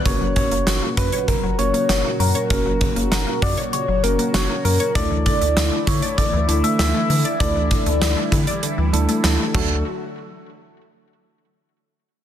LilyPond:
<<
  \new Staff \with { instrumentName = "Soft synth lead" } { \time 4/4 \key fis \phrygian \tempo 4 = 98 cis''8 cis''4 b'8 ais'8 cis''4 ais'8 | ais'4 ais'8 d''8 cis''8 ais'8 cis''8 ais'8 | d''8 d''4 cis''8 d''8. e''16 e''4 | d''2. r4 |
r1 | }
  \new Staff \with { instrumentName = "Tine electric piano" } { \time 4/4 \key fis \phrygian << { r1 | r1 | r1 | r2. a''8 r8 |
r1 | } \\ { <ais cis' fis' ais'>4. r4 <ais cis' fis' ais'>4~ <ais cis' fis' ais'>16 r16 | <ais cis' fis' ais'>4. r4 <ais cis' fis' ais'>4~ <ais cis' fis' ais'>16 r16 | <a d' e' a'>4. r4 <a d' e' a'>4~ <a d' e' a'>16 r16 | <a d' e' a'>4. r4 <a d' e' a'>4 <a d' fis' a'>8 |
r1 | } >> }
  \new Staff \with { instrumentName = "Synth arpeggio sound" } { \time 4/4 \key fis \phrygian cis16 fis16 cis16 ais16 fis'16 ais16 fis'16 cis''16 cis16 fis16 cis16 ais16 fis'16 ais16 fis16 cis''16 | cis16 fis16 cis16 ais16 fis'16 ais16 fis'16 cis''16 cis16 fis16 cis16 ais16 fis'16 ais16 fis16 cis''16 | d16 e16 d16 a16 e'16 a16 e'16 d''16 d16 e16 d16 a16 e'16 a16 e16 d''16 | d16 e16 d16 a16 e'16 a16 e'16 d''16 d16 e16 d16 a16 e'16 a16 <d fis a fis'>8 |
r1 | }
  \new Staff \with { instrumentName = "Analog synth pad" } { \clef bass \time 4/4 \key fis \phrygian << { <cis fis fis'>1~ | <cis fis fis'>1 | <d e e'>1~ | <d e e'>2.~ <d e e'>8 r8 |
r1 | } \\ { ais,1~ | ais,1 | a1 | g2.~ g8 r8 |
r1 | } >> }
  \new Staff \with { instrumentName = "Analog synth bass" } { \clef bass \time 4/4 \key fis \phrygian fis,,16 fis,,16 r16 fis,,16 fis,,16 r16 fis,16 r8 fis,,16 fis,,16 r16 fis,,16 r16 fis,16 r16 | fis,,16 fis,,16 r16 fis,,16 fis,,16 r16 fis,16 r8 fis,,16 fis,,16 r16 fis,,16 r16 fis,16 r16 | d,16 d,16 r16 d,16 d,16 r16 d16 r8 d,16 d,16 r16 d,16 r16 d16 r16 | d,16 d,16 r16 d,16 d,16 r16 d16 r8 d,16 d,16 r16 d,16 r16 d,8 |
r1 | }
  \new DrumStaff \with { instrumentName = "Drums" } \drummode { \time 4/4 <hh bd>8 <hh bd>16 hh16 <hh sn>8 <hh bd>16 hh16 <hh bd>8 hh16 hh16 <hh sn>8 hho16 hh16 | <hh bd>8 <hh bd>16 hh16 <hh sn>8 <hho bd>16 hh16 hh8 hh16 hh16 <hh sn>8 hho16 hh16 | <hh bd>8 <hh bd>16 hh16 <hh sn>8 <hh bd>16 hh16 <hh bd>8 hh16 hh16 <hh sn>8 hho16 hh16 | <hh bd>8 <hh bd>16 hh16 <hh sn>8 <hh bd>16 hh16 hh8 hh16 hh16 <hh sn>8 <cymc bd>8 |
r4 r4 r4 r4 | }
>>